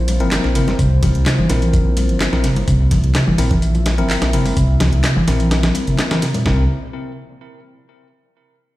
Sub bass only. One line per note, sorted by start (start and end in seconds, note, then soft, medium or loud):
0.00 0.22 A#1 medium
0.21 0.40 G1 loud
0.45 0.58 A#1 medium
0.56 0.76 G1 loud
0.79 0.99 C2 loud
1.03 1.13 C2 loud
1.15 1.24 C2 medium
1.39 1.48 G1 loud
1.50 2.11 A#1 medium
2.09 2.29 G1 loud
2.33 2.45 A#1 medium
2.44 2.64 G1 loud
2.68 2.88 C2 loud
2.91 3.02 C2 loud
3.04 3.13 C2 medium
3.27 3.37 G1 loud
3.39 4.00 A#1 medium
3.98 4.17 G1 loud
4.22 4.35 A#1 medium
4.33 4.53 G1 loud
4.57 4.77 C2 loud
4.80 4.91 C2 loud
4.93 5.02 C2 medium
5.16 5.26 G1 loud
5.28 5.72 A#1 medium
5.87 5.97 G1 medium
6.46 6.68 C2 loud